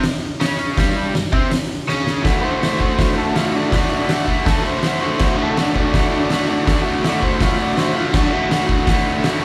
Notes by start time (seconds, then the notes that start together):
0.03 snare, open hi-hat
0.40 C#3 C#4, snare, open hi-hat
0.77 G2 G3, kick, snare, open hi-hat
1.15 G2, snare, open hi-hat
1.32 C3 C4, kick
1.51 snare, open hi-hat
1.88 C#3 C#4, snare
2.07 snare
2.22 D2 A2 D3, kick, snare, open hi-hat
2.26 A3 F#4
2.40 A3 F#4 B4
2.45 D3 C5
2.59 A2 D3 A3, snare, open hi-hat
2.64 F#4
2.78 A3 F#4, kick
2.83 D3
2.96 D2 A2 D3 A3, kick, snare, open hi-hat
3.00 F#4
3.18 A4
3.33 A2 D3 A3 F4, snare, open hi-hat
3.37 F#4
3.53 A3 D4 F#4
3.58 D3
3.72 D2 A2 D3 A3, kick, snare, open hi-hat
3.76 F#4
3.90 A3 F#4
3.94 D3
4.08 A2 D3 A3, snare, open hi-hat
4.13 F#4
4.26 A3 F#4, kick
4.31 D3
4.43 D2 A2 D3 A3 A4, kick, snare, open hi-hat
4.48 F#4
4.61 B4
4.66 C5
4.82 A2 D3 A3, snare, open hi-hat
4.87 F#4
5.01 D3 A3 F#4
5.18 D2 A2 D3, kick, snare, crash
5.23 A3 F#4
5.37 A3 F#4
5.42 D3 A4
5.56 A2 D3 A3, snare, open hi-hat
5.61 D4 F#4
5.75 A3 C#4 F#4, kick
5.80 D3 D4
5.93 D2 A2 D3 A3, kick, snare, open hi-hat
5.97 F#4
6.29 A2 D3 A3, snare, open hi-hat
6.33 F#4
6.46 A3 F#4
6.51 D3
6.65 D2 A2 D3 A3, kick, snare, open hi-hat
6.69 F#4
6.82 A3 F#4
6.87 D3
7.02 A2 D3 A3, snare, open hi-hat
7.07 F#4 D5
7.21 A3 F#4 C5, kick
7.26 D3
7.38 D2 A2 D3 A3, kick, snare, open hi-hat
7.42 F4 F#4
7.57 C#5
7.62 D5
7.75 A2 D3 A3 C5, snare, open hi-hat
7.80 F#4
7.93 A3 F4 F#4
7.98 D3
8.12 D2 A2 D3 F#3 A3 D4, kick, snare, crash
8.17 F#4
8.30 A3 F#4
8.34 D3
8.49 A2 D3 A3, snare, open hi-hat
8.53 F#4
8.68 A3 F#4, kick
8.72 D3
8.86 D2 A2 D3 A3, kick, snare, open hi-hat
8.91 F#4
9.23 A2 D3 A3, snare, open hi-hat
9.27 F#4
9.42 F#4